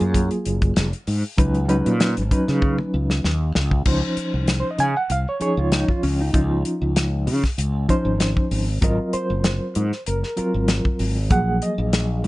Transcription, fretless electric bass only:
0.01 0.28 F#2 medium
0.46 0.74 F#1 medium
0.77 0.91 F1 loud
1.07 1.22 G#2 medium
1.38 1.81 C#2 medium
1.86 2.14 A#2 medium
2.17 2.30 G#1 medium
2.48 2.76 C#3 medium
2.94 3.21 C#2 medium
3.24 3.52 D#2 medium
3.56 3.83 C#2 medium
3.86 4.01 C#2 medium
4.17 muted fretless electric bass stroke soft
4.34 4.62 C2 medium
4.78 4.94 C#3 medium
5.10 5.25 C2 medium
5.41 muted fretless electric bass stroke soft
5.57 5.85 C#2 medium
6.03 6.31 C#2 medium
6.34 6.62 C#2 medium
6.82 7.28 C#2 medium
7.27 7.42 C#3 medium
7.58 7.86 C#2 medium
8.05 8.33 G#1 medium
8.51 8.79 G#1 medium
8.82 8.97 G#1 medium
9.13 muted fretless electric bass stroke soft
9.30 9.58 F#1 medium
9.76 9.91 G#2 medium
10.07 10.22 F#1 medium
10.38 muted fretless electric bass stroke soft
10.54 10.82 G#1 medium
11.00 11.28 G#1 medium
11.30 11.59 A#1 medium
11.78 12.26 A#1 medium
12.24 12.27 A#2 medium

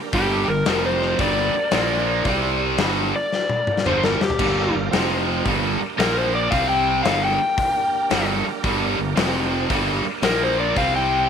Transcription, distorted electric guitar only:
0.13 0.47 G2 medium
0.13 0.47 D3 medium
0.13 0.48 G3 loud
0.48 0.63 G2 medium
0.48 0.63 D3 medium
0.66 1.18 F2 medium
0.66 1.19 C3 medium
0.66 1.19 F3 loud
1.18 1.52 G2 medium
1.18 1.53 D3 loud
1.18 1.54 G3 loud
1.54 muted distorted electric guitar stroke medium
1.71 2.25 A#2 medium
1.71 2.25 F3 medium
1.71 2.25 A#3 medium
2.26 2.79 C3 medium
2.26 2.79 G3 medium
2.26 2.79 C4 medium
2.78 3.12 G2 medium
2.78 3.13 D3 medium
2.78 3.13 G3 loud
3.86 4.19 G2 medium
3.86 4.20 D3 medium
3.86 4.20 G3 medium
4.21 muted distorted electric guitar stroke medium
4.39 4.72 G2 medium
4.39 4.73 D3 medium
4.39 4.73 G3 medium
4.74 4.88 G2 medium
4.74 4.89 D3 medium
4.93 5.45 F2 medium
4.93 5.45 C3 medium
4.93 5.45 F3 medium
5.46 5.79 G2 medium
5.46 5.79 D3 loud
5.46 5.80 G3 loud
5.80 muted distorted electric guitar stroke medium
5.97 6.50 A#2 medium
5.97 6.50 F3 medium
5.97 6.51 A#3 medium
6.50 7.03 C3 medium
6.50 7.03 G3 medium
6.50 7.04 C4 medium
7.03 7.37 G2 medium
7.03 7.38 D3 medium
7.03 7.38 G3 medium
8.11 8.44 G2 loud
8.11 8.45 D3 medium
8.11 8.45 G3 medium
8.46 muted distorted electric guitar stroke medium
8.64 8.97 G2 loud
8.64 8.97 D3 medium
8.64 8.98 G3 loud
8.98 9.13 G2 medium
8.98 9.13 D3 medium
9.16 9.69 F2 loud
9.16 9.69 C3 medium
9.16 9.70 F3 loud
9.69 10.03 G2 loud
9.69 10.04 D3 medium
9.69 10.04 G3 loud
10.05 muted distorted electric guitar stroke medium
10.22 10.75 A#2 medium
10.22 10.76 F3 medium
10.22 10.76 A#3 medium
10.76 11.29 C3 medium
10.76 11.29 G3 medium
10.76 11.29 C4 medium

